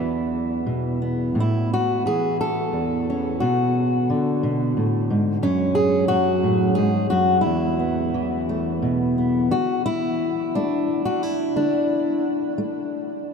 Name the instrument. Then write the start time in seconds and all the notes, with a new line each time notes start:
steel-string acoustic guitar
Already playing: E2 E3 B3 E4
0.66 B2
1.02 B3
1.35 A2
1.40 E4
1.74 F#4
2.06 E3 G#4
2.41 A4
2.73 E2
3.10 C#4
3.40 B2 F#4
4.10 D3
4.43 B2
4.77 A2
5.10 G#2
5.43 F#2 C#4
5.75 G#4
6.08 F#3 F#4
6.43 A2
6.75 G#2 G#4
7.10 F#2 F#4
7.41 E4
7.46 E2
7.79 B3
8.14 E3
8.49 A3
8.82 B2
9.18 B3
9.51 D3 F#4
9.86 E4
10.55 A3 D4
11.05 F#4
11.23 E4
11.56 D3 D4
12.58 A3